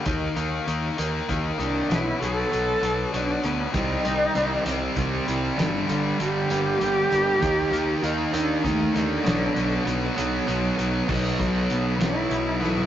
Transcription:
<<
  \new Staff \with { instrumentName = "Cello" } { \time 6/8 \key b \phrygian \tempo 4. = 65 bes8 r2 d'8 | e'8 a'4. d'8 b8 | ees'2 r4 | r4 g'2~ |
g'4 dis'8 d'8 a8 d8~ | d4. r4. | r4 b8 e'4 e'8 | }
  \new Staff \with { instrumentName = "Clean electric guitar" } { \clef bass \time 6/8 \key b \phrygian dis8 ais8 dis8 ais8 dis8 ais8 | b,8 fis8 fis8 b8 fis8 b8 | c8 ees8 ees8 g8 ees8 g8 | g,8 d8 g8 bes8 g8 bes8 |
dis8 ais2 ais8 | b,8 fis8 fis8 b8 fis8 b8 | b,8 fis8 b8 fis8 b8 d'8 | }
  \new Staff \with { instrumentName = "Distorted electric guitar" } { \clef bass \time 6/8 \key b \phrygian <dis ais dis'>8 <dis ais dis'>8 <dis ais dis'>8 <dis ais dis'>8 <dis ais dis'>8 <dis ais dis'>8 | <b, fis b>8 <b, fis b>8 <b, fis b>8 <b, fis b>8 <b, fis b>8 <b, fis b>8 | <c g c'>8 <c g c'>8 <c g c'>8 <c g c'>8 <c g c'>8 <c g c'>8 | <g, d g>8 <g, d g>8 <g, d g>8 <g, d g>8 <g, d g>8 <g, d g>8 |
<dis ais dis'>8 <dis ais dis'>8 <dis ais dis'>8 <dis ais dis'>8 <dis ais dis'>8 <dis ais dis'>8 | <b, fis b>8 <b, fis b>8 <b, fis b>8 <b, fis b>8 <b, fis b>8 <b, fis b>8 | <b, fis b>2~ <b, fis b>8 <b, fis b>8 | }
  \new Staff \with { instrumentName = "Distorted electric guitar" } { \clef bass \time 6/8 \key b \phrygian r2. | r2. | <c g c'>8 <c g c'>8 <c g c'>8 <c g c'>8 <c g c'>8 <c g c'>8 | <g, d g>8 <g, d g>8 <g, d g>8 <g, d g>8 <g, d g>8 <g, d g>8 |
<dis ais dis'>8 <dis ais dis'>8 <dis ais dis'>8 <dis ais dis'>8 <dis ais dis'>8 <dis ais dis'>8 | <b, fis b>8 <b, fis b>8 <b, fis b>8 <b, fis b>8 <b, fis b>8 <b, fis b>8 | <b, fis b>4. <b, fis b>4. | }
  \new Staff \with { instrumentName = "Picked electric bass" } { \clef bass \time 6/8 \key b \phrygian dis,8 dis,8 dis,8 dis,8 dis,8 c,8 | b,,8 b,,8 b,,8 b,,8 b,,8 d,8 | c,8 c,8 c,8 c,8 c,8 c,8 | g,,8 g,,8 g,,8 g,,8 g,,8 g,,8 |
dis,8 dis,8 dis,8 dis,8 dis,8 dis,8 | b,,8 b,,8 b,,8 b,,8 b,,8 b,,8 | b,,8 b,,8 b,,4 b,,8 b,,8 | }
  \new DrumStaff \with { instrumentName = "Drums" } \drummode { \time 6/8 <hh bd>8 hh8 hh8 hh8 <hh bd>8 hh8 | <hh sn>8 hh8 hh8 hh8 hh8 hh8 | <hh bd>8 hh8 hh8 hh8 <hh bd>8 hh8 | <hh sn>8 hh8 hh8 hh8 hh8 hh8 |
<hh bd>8 hh8 hh8 hh8 <hh bd>8 hh8 | <hh sn>8 hh8 hh8 hh8 hh8 hh8 | <cymc bd>8 <hh bd>8 hh8 <hh sn>8 hh8 sn16 tomfh16 | }
>>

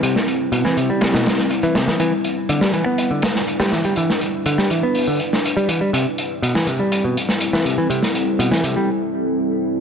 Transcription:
<<
  \new Staff \with { instrumentName = "Ambient pad" } { \time 4/4 \key c \lydian \tempo 4 = 122 << { <c' b'>1 | <d' b'>1~ | <d' b'>1 | <c' a'>1~ |
<c' a'>1 | } \\ { <g e'>1~ | <g e'>1~ | <g e'>1 | <g e'>1~ |
<g e'>1 | } >> }
  \new Staff \with { instrumentName = "Picked electric bass" } { \clef bass \time 4/4 \key c \lydian c16 r8. b,16 e16 c16 g8 b,16 r8. e16 c16 e16 | e16 r8. d16 g16 e16 b8 d16 r8. g16 e16 g16 | e16 r8. d16 g16 e16 b8 d16 r8. g16 e16 g16 | c16 r8. b,16 e16 c16 g8 b,16 r8. e16 c16 e16 |
c16 r8. b,16 e16 c16 g16 r2 | }
  \new DrumStaff \with { instrumentName = "Drums" } \drummode { \time 4/4 hh16 sn16 hh8 hh16 sn16 hh8 <hh sn>16 <hh sn>16 <hh sn>16 sn16 hh16 hh16 <hh sn>16 sn16 | hh8 hh8 hh16 sn16 hh8 hh8 <hh sn>16 sn16 hh16 <hh sn>16 sn16 hh16 | hh16 sn16 hh8 hh16 sn16 hh8 hho8 hh16 sn16 hh16 hh16 hh8 | hh8 hh8 hh16 sn16 hh8 hh8 hh16 sn16 hh16 sn16 hh8 |
hh16 sn16 hh8 hh16 sn16 hh8 r4 r4 | }
>>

